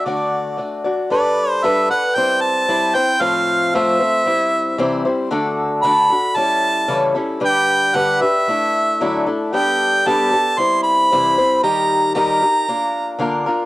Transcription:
0.05 0.58 D3 medium
0.05 0.56 A3 medium
0.05 0.57 D4 medium
0.05 0.58 F#4 medium
0.05 0.84 D5 medium
0.05 0.58 D5 medium
0.57 0.84 A3 soft
0.57 0.84 D4 medium
0.57 0.84 F#4 medium
0.57 0.83 D5 medium
0.84 1.10 D4 soft
0.84 1.11 F#4 soft
0.84 1.11 D5 medium
1.10 1.63 G3 medium
1.10 1.62 D4 medium
1.10 1.63 A4 medium
1.10 1.64 B4 medium
1.10 1.51 D5 medium
1.51 1.65 C5 medium
1.64 1.90 G3 medium
1.64 1.90 D4 loud
1.64 1.89 A4 medium
1.64 1.88 B4 medium
1.64 1.90 E5 loud
1.90 2.17 D4 soft
1.90 2.16 A4 soft
1.90 2.16 B4 medium
1.90 2.17 F#5 loud
2.15 2.67 G3 medium
2.15 2.67 C4 medium
2.15 2.68 E4 medium
2.15 2.68 C5 medium
2.15 2.43 G5 medium
2.41 2.96 A5 loud
2.68 2.95 G3 medium
2.68 2.95 C4 medium
2.68 2.94 E4 medium
2.68 2.94 C5 medium
2.95 3.20 C4 soft
2.95 3.21 E4 soft
2.95 3.20 C5 medium
2.95 3.23 G5 loud
3.20 3.73 A2 medium
3.20 3.73 F3 medium
3.20 3.74 A3 medium
3.20 3.74 C4 medium
3.20 3.74 F4 medium
3.20 3.74 C5 medium
3.20 3.76 F5 loud
3.74 4.00 A2 medium
3.74 4.00 F3 medium
3.74 4.01 A3 medium
3.74 4.00 C4 loud
3.74 4.00 F4 medium
3.74 3.98 C5 medium
3.74 5.06 E5 loud
3.99 4.25 A3 soft
3.99 4.25 C4 soft
3.99 4.27 F4 medium
3.99 4.26 C5 medium
4.26 4.78 G3 medium
4.26 4.78 C4 medium
4.26 4.79 E4 medium
4.26 4.79 C5 medium
4.78 5.05 C3 medium
4.78 5.05 E3 loud
4.78 5.05 G3 loud
4.78 5.05 C4 loud
4.78 5.04 E4 medium
4.78 5.04 C5 medium
5.05 5.31 G3 medium
5.05 5.31 C4 medium
5.05 5.31 E4 medium
5.05 5.31 C5 medium
5.31 5.82 D3 medium
5.31 5.83 A3 medium
5.31 5.83 D4 loud
5.31 5.83 F#4 medium
5.31 5.84 A4 loud
5.83 6.10 D3 medium
5.83 6.11 A3 medium
5.83 6.11 D4 medium
5.83 6.11 F#4 loud
5.83 6.09 A4 loud
5.83 6.38 B5 loud
6.10 6.37 D4 soft
6.10 6.37 F#4 medium
6.10 6.37 A4 medium
6.36 6.87 G3 medium
6.36 6.87 C#4 medium
6.36 6.88 E4 medium
6.36 6.88 A4 medium
6.36 7.16 A5 loud
6.88 7.15 C#3 medium
6.88 7.15 E3 medium
6.88 7.15 G3 medium
6.88 7.15 C#4 medium
6.88 7.14 E4 medium
6.88 7.13 A4 medium
7.15 7.40 G3 soft
7.15 7.40 C#4 medium
7.15 7.41 E4 medium
7.15 7.41 A4 medium
7.40 7.93 D3 medium
7.40 7.94 G3 medium
7.40 7.94 D4 medium
7.40 7.94 G4 medium
7.40 7.94 B4 medium
7.46 7.97 G5 loud
7.94 8.21 D3 medium
7.94 8.21 G3 medium
7.94 8.21 D4 medium
7.94 8.21 G4 medium
7.94 8.20 B4 medium
7.94 8.23 F#5 loud
8.21 8.48 D4 soft
8.21 8.48 G4 soft
8.21 8.47 B4 medium
8.21 9.26 E5 loud
8.48 9.00 A3 medium
8.48 9.00 D4 medium
8.48 9.01 E4 medium
8.48 9.01 A4 medium
9.01 9.27 D3 medium
9.01 9.27 F#3 medium
9.01 9.27 A3 medium
9.01 9.27 D4 medium
9.01 9.26 E4 medium
9.01 9.25 A4 medium
9.26 9.53 A3 medium
9.26 9.53 D4 medium
9.26 9.53 E4 medium
9.26 9.53 A4 medium
9.52 10.05 G3 medium
9.52 10.05 B3 medium
9.52 10.05 D4 medium
9.52 10.06 G4 medium
9.52 10.06 A4 medium
9.52 10.09 G5 medium
10.06 10.32 G3 medium
10.06 10.32 B3 medium
10.06 10.32 D4 medium
10.06 10.31 G4 medium
10.06 10.30 A4 medium
10.06 10.61 A5 loud
10.31 10.58 D4 soft
10.31 10.58 G4 soft
10.31 10.57 A4 medium
10.58 11.11 G3 medium
10.58 11.11 C4 medium
10.58 11.11 E4 medium
10.58 11.12 C5 medium
10.58 10.83 C6 loud
10.83 11.59 B5 loud
11.12 11.38 C3 medium
11.12 11.38 E3 medium
11.12 11.38 G3 medium
11.12 11.38 C4 medium
11.12 11.38 E4 medium
11.12 11.37 C5 medium
11.38 11.63 G3 soft
11.38 11.63 C4 soft
11.38 11.63 E4 medium
11.38 11.64 C5 medium
11.63 12.14 D#3 medium
11.63 12.14 G3 medium
11.63 12.15 D#4 medium
11.63 12.15 G4 medium
11.63 12.16 A#4 medium
11.63 12.12 A#5 loud
12.15 12.42 D#3 medium
12.15 12.42 G3 medium
12.15 12.41 D#4 medium
12.15 12.41 G4 medium
12.15 12.40 A#4 loud
12.15 13.17 A#5 loud
12.41 12.68 D#4 soft
12.41 12.68 G4 medium
12.41 12.68 A#4 medium
12.68 13.18 A#3 medium
12.68 13.18 D4 medium
12.68 13.19 F4 medium
12.68 13.20 A#4 medium
13.18 13.46 D3 medium
13.18 13.47 A#3 medium
13.18 13.47 D4 medium
13.18 13.46 F4 medium
13.18 13.45 A#4 loud
13.46 13.65 D4 medium
13.46 13.65 F4 medium
13.46 13.65 A#4 medium

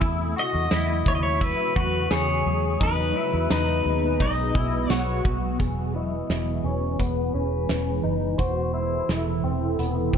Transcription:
0.00 0.32 E2 loud
0.00 2.78 C#3 medium
0.00 2.78 F#3 medium
0.00 2.77 A3 medium
0.00 0.36 E4 loud
0.00 2.78 F#4 medium
0.00 kick loud
0.00 ride medium
0.36 0.71 F#4 medium
0.36 1.10 D#5 loud
0.54 0.70 E2 loud
0.71 1.02 E2 medium
0.71 1.40 E4 medium
0.71 snare loud
0.71 ride medium
0.71 tambourine medium
1.06 1.52 D#2 medium
1.06 1.14 C#5 loud
1.06 kick loud
1.15 1.21 D#5 medium
1.23 1.43 C#5 medium
1.41 1.75 E4 medium
1.41 1.77 B4 loud
1.41 kick medium
1.41 ride medium
1.76 2.07 E2 medium
1.76 2.10 F#4 medium
1.76 2.13 B4 medium
1.76 kick loud
2.11 2.42 E2 loud
2.11 2.81 G#4 medium
2.11 2.83 C#5 medium
2.11 snare loud
2.11 ride medium
2.11 tambourine medium
2.46 2.77 E2 loud
2.80 3.11 E2 loud
2.80 5.57 B2 medium
2.80 5.57 B3 medium
2.80 3.16 D#4 medium
2.80 5.57 B4 medium
2.80 3.48 B4 medium
2.80 kick loud
2.80 ride medium
3.16 3.51 E4 medium
3.34 3.49 E2 loud
3.50 3.81 E2 loud
3.50 4.19 D#4 medium
3.50 4.23 B4 medium
3.50 snare loud
3.50 ride medium
3.50 tambourine medium
3.85 4.16 D#2 medium
4.20 4.51 B1 medium
4.20 4.55 D#4 medium
4.20 4.92 D#5 medium
4.20 kick medium
4.20 ride medium
4.55 4.86 B1 loud
4.55 4.90 E4 medium
4.55 kick loud
4.90 5.21 B1 medium
4.90 5.59 F#4 medium
4.90 5.22 C#5 medium
4.90 snare loud
4.90 ride medium
4.90 tambourine medium
5.25 5.56 B1 medium
5.25 kick loud
5.59 6.21 E1 medium
5.59 10.18 E3 medium
5.59 8.36 G#3 medium
5.59 8.36 B3 medium
5.59 8.36 G#4 medium
5.59 5.94 G#4 medium
5.59 8.36 B4 medium
5.59 kick medium
5.59 closed hi-hat medium
5.95 6.64 E4 medium
5.95 6.66 D#5 medium
6.29 6.60 E1 medium
6.29 snare medium
6.29 closed hi-hat medium
6.64 6.95 E1 medium
6.64 6.99 C#4 medium
6.64 7.01 C#5 medium
6.99 7.30 E1 medium
6.99 7.34 B3 medium
6.99 7.34 B4 medium
6.99 kick medium
6.99 closed hi-hat medium
7.34 7.65 E1 medium
7.34 8.03 C#4 medium
7.34 8.38 B4 medium
7.69 8.00 E1 medium
7.69 snare medium
7.69 closed hi-hat medium
8.03 8.35 F#1 medium
8.03 8.39 D#4 medium
8.38 9.00 E1 medium
8.38 10.18 C3 medium
8.38 10.18 A3 medium
8.38 10.18 E4 medium
8.38 8.73 F#4 medium
8.38 10.18 A4 medium
8.38 8.73 C5 medium
8.38 kick medium
8.38 closed hi-hat medium
8.74 9.43 E4 medium
8.74 9.10 C5 medium
9.09 9.40 E1 medium
9.09 9.75 E5 medium
9.09 snare loud
9.09 closed hi-hat medium
9.44 9.75 E1 medium
9.44 9.78 C4 medium
9.79 10.09 E1 medium
9.79 10.14 B3 medium
9.79 closed hi-hat medium
10.13 10.18 E1 medium
10.13 10.18 C4 medium
10.13 kick medium

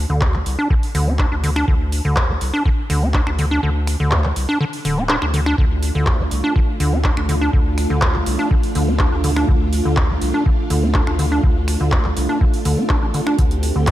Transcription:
0.10 0.42 D2 medium
0.10 0.23 D3 medium
0.21 0.36 D2 medium
0.21 kick loud
0.21 clap loud
0.34 0.38 D4 medium
0.34 clap soft
0.46 0.56 C2 medium
0.46 open hi-hat loud
0.59 0.68 D4 loud
0.70 0.75 D3 loud
0.70 kick loud
0.83 open hi-hat medium
0.95 1.28 D2 loud
0.95 1.09 D3 medium
0.95 open hi-hat loud
1.07 1.14 D4 loud
1.19 1.26 D4 loud
1.19 kick loud
1.19 clap loud
1.32 1.64 D2 medium
1.32 1.36 D4 medium
1.44 1.50 D3 medium
1.44 open hi-hat loud
1.56 1.66 D4 loud
1.56 finger snap medium
1.68 2.01 D2 medium
1.68 1.75 D3 medium
1.68 kick loud
1.92 open hi-hat loud
2.05 2.37 D2 medium
2.05 2.18 D3 medium
2.16 2.31 D2 medium
2.16 kick loud
2.16 clap loud
2.29 2.33 D4 medium
2.41 2.51 C2 medium
2.41 open hi-hat medium
2.54 2.63 D4 loud
2.65 2.70 D3 loud
2.65 kick loud
2.90 3.23 D2 loud
2.90 3.04 D3 medium
2.90 open hi-hat loud
3.02 3.09 D4 loud
3.14 3.21 D4 loud
3.14 kick loud
3.14 clap loud
3.27 3.59 D2 medium
3.27 3.31 D4 medium
3.27 finger snap medium
3.39 3.46 D3 medium
3.39 open hi-hat loud
3.51 3.61 D4 loud
3.63 3.96 D2 loud
3.63 3.70 D3 medium
3.87 finger snap medium
3.87 open hi-hat loud
4.00 4.32 D2 medium
4.00 4.13 D3 medium
4.11 4.26 D2 medium
4.11 clap loud
4.24 4.28 D4 medium
4.24 clap soft
4.36 4.46 C2 medium
4.36 open hi-hat loud
4.49 4.59 D4 loud
4.61 4.65 D3 loud
4.73 open hi-hat medium
4.85 5.18 D1 loud
4.85 4.99 D3 medium
4.85 open hi-hat loud
4.98 5.04 D4 loud
5.09 5.16 D4 loud
5.09 clap loud
5.22 5.54 D2 medium
5.22 5.26 D4 medium
5.22 finger snap medium
5.34 5.41 D3 medium
5.34 open hi-hat loud
5.46 5.56 D4 loud
5.46 finger snap medium
5.58 5.91 D2 medium
5.58 5.65 D3 medium
5.58 13.91 A3 medium
5.58 13.35 D4 medium
5.58 13.37 F4 medium
5.58 kick loud
5.83 open hi-hat loud
5.95 6.28 D2 medium
5.95 6.08 D3 medium
6.07 6.21 D2 medium
6.07 kick loud
6.07 clap loud
6.19 6.23 D4 medium
6.31 6.41 C2 medium
6.31 open hi-hat loud
6.44 6.54 D4 loud
6.56 6.60 D3 loud
6.56 kick loud
6.80 7.13 D2 loud
6.80 6.94 D3 medium
6.80 open hi-hat loud
6.93 6.99 D4 loud
7.04 7.11 D4 loud
7.04 kick loud
7.04 clap loud
7.17 7.50 D2 medium
7.17 7.21 D4 medium
7.17 finger snap medium
7.29 7.36 D3 medium
7.29 open hi-hat loud
7.41 7.51 D4 loud
7.53 7.86 D2 loud
7.53 7.60 D3 medium
7.53 kick loud
7.78 finger snap medium
7.78 open hi-hat loud
7.90 8.23 D2 medium
7.90 8.04 D3 medium
8.02 8.16 D2 medium
8.02 kick loud
8.02 clap loud
8.14 8.19 D4 medium
8.14 clap soft
8.26 8.37 C2 medium
8.26 open hi-hat loud
8.39 8.49 D4 loud
8.51 8.55 D3 loud
8.51 kick loud
8.63 open hi-hat medium
8.75 9.08 D2 loud
8.75 8.89 D3 medium
8.75 open hi-hat loud
8.88 8.94 D4 loud
8.99 9.07 D4 loud
8.99 kick loud
8.99 clap loud
9.12 9.45 D2 medium
9.12 9.16 D4 medium
9.24 9.31 D3 medium
9.24 open hi-hat loud
9.36 9.46 D4 loud
9.36 finger snap medium
9.48 9.81 D2 loud
9.48 9.55 D3 medium
9.48 kick loud
9.73 open hi-hat loud
9.85 10.18 D2 medium
9.85 9.99 D3 medium
9.97 10.11 D2 medium
9.97 kick loud
9.97 clap loud
10.10 10.14 D4 medium
10.22 10.32 C2 medium
10.22 open hi-hat loud
10.34 10.44 D4 loud
10.46 10.50 D3 loud
10.46 kick loud
10.70 11.03 D2 loud
10.70 10.84 D3 medium
10.70 open hi-hat loud
10.83 10.89 D4 loud
10.94 11.02 D4 loud
10.94 kick loud
10.94 clap loud
11.07 11.40 D2 medium
11.07 11.11 D4 medium
11.07 finger snap medium
11.19 11.26 D3 medium
11.19 open hi-hat loud
11.32 11.42 D4 loud
11.43 11.77 D2 medium
11.43 11.50 D3 medium
11.43 kick loud
11.68 finger snap medium
11.68 open hi-hat loud
11.80 12.13 D2 medium
11.80 11.94 D3 medium
11.92 12.06 D2 medium
11.92 kick loud
11.92 clap loud
12.04 12.09 D4 medium
12.04 clap soft
12.17 12.27 C2 medium
12.17 open hi-hat loud
12.29 12.39 D4 loud
12.41 12.45 D3 loud
12.41 kick loud
12.54 open hi-hat medium
12.65 12.76 D2 medium
12.65 12.79 D3 medium
12.65 open hi-hat loud
12.78 12.85 D4 loud
12.89 12.97 D4 loud
12.89 kick loud
12.89 clap loud
13.02 13.12 A1 medium
13.02 13.06 D4 medium
13.14 13.21 D3 medium
13.14 open hi-hat loud
13.27 13.37 D4 loud
13.27 finger snap medium
13.39 13.72 D2 medium
13.39 13.46 D3 medium
13.39 13.91 C4 medium
13.39 13.91 G4 medium
13.39 kick loud
13.39 closed hi-hat medium
13.51 closed hi-hat soft
13.63 open hi-hat loud
13.76 13.91 D2 medium
13.76 13.89 D3 medium
13.87 13.91 D2 medium
13.87 kick loud
13.87 clap loud
13.87 closed hi-hat medium

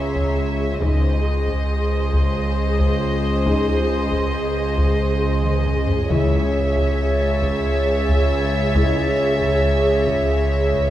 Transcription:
0.00 0.77 C#2 medium
0.00 0.76 G#4 medium
0.00 0.77 C#5 medium
0.00 0.76 E5 medium
0.00 0.32 G#5 soft
0.00 0.33 A#5 soft
0.00 0.33 C6 soft
0.15 taiko medium
0.81 6.06 C#2 soft
0.81 6.06 C#2 medium
0.81 6.07 C#2 medium
0.81 2.09 C#3 medium
0.81 1.14 G#3 medium
0.81 1.14 D#4 soft
0.81 6.06 G#4 soft
0.81 6.10 C5 medium
0.81 6.06 D#5 soft
0.81 5.62 D#6 soft
0.81 taiko medium
1.25 5.15 D#6 soft
1.47 taiko medium
1.69 5.62 C6 soft
2.14 taiko medium
2.80 taiko medium
3.46 3.79 G#3 medium
3.46 3.79 D#4 medium
3.46 taiko medium
3.89 6.54 C6 soft
4.12 taiko medium
4.78 taiko medium
5.44 taiko mid medium
5.66 taiko low-mid medium
5.88 taiko low medium
6.09 10.90 C#2 medium
6.09 7.38 C#3 medium
6.09 6.43 G#3 medium
6.09 6.43 E4 medium
6.09 10.90 G#4 medium
6.09 10.90 C#5 medium
6.09 10.90 E5 medium
6.09 10.90 G#6 soft
6.09 taiko medium
6.76 taiko medium
6.98 9.93 A6 soft
7.42 taiko medium
8.09 taiko medium
8.75 9.08 G#3 medium
8.75 9.08 E4 medium
8.75 taiko medium
9.41 taiko medium
9.93 10.90 A#6 soft
10.07 taiko medium
10.73 taiko medium

